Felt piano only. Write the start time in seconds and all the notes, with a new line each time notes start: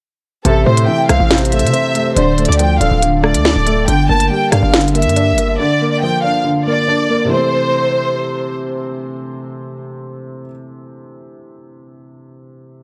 0.45 C3
0.67 A3
0.88 E3
1.09 C4
1.31 C3
1.52 A3
1.73 C4
1.95 A3
2.16 D3
2.38 A3
2.59 F3
2.81 D4
3.02 D3
3.23 A3
3.45 D4
3.66 A3
3.88 D3
4.09 A#3
4.30 G3
4.52 D4
4.73 D3
4.95 A#3
5.16 D4
5.38 A#3
5.60 D3
5.81 A#3
6.03 F3
6.24 D4
6.44 D3
6.67 A#3
6.88 D4
7.10 A#3
7.25 C3 E3
7.33 A3
7.37 C4